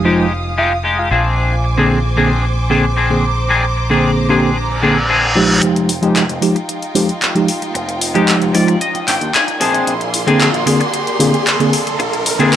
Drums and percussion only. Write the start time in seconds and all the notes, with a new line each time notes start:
5.63 closed hi-hat
5.76 closed hi-hat
5.89 open hi-hat
6.03 closed hi-hat
6.16 clap, closed hi-hat
6.29 closed hi-hat
6.42 open hi-hat
6.56 closed hi-hat
6.69 closed hi-hat
6.82 closed hi-hat
6.95 open hi-hat
7.09 closed hi-hat
7.22 clap, closed hi-hat
7.36 closed hi-hat
7.48 open hi-hat
7.62 closed hi-hat
7.75 closed hi-hat
7.89 closed hi-hat
8.01 open hi-hat
8.15 closed hi-hat
8.28 clap, closed hi-hat
8.42 closed hi-hat
8.55 open hi-hat
8.68 closed hi-hat
8.81 closed hi-hat
8.95 closed hi-hat
9.08 clap, open hi-hat
9.21 closed hi-hat
9.34 clap, closed hi-hat
9.48 closed hi-hat
9.61 open hi-hat
9.74 closed hi-hat
9.87 closed hi-hat
10.01 closed hi-hat
10.14 open hi-hat
10.28 closed hi-hat
10.40 clap, closed hi-hat
10.54 closed hi-hat
10.67 open hi-hat
10.81 closed hi-hat
10.94 closed hi-hat
11.07 closed hi-hat
11.20 open hi-hat
11.34 closed hi-hat
11.47 clap, closed hi-hat
11.60 closed hi-hat
11.73 open hi-hat
11.87 closed hi-hat
12.00 closed hi-hat
12.13 closed hi-hat
12.26 open hi-hat
12.40 closed hi-hat
12.53 closed hi-hat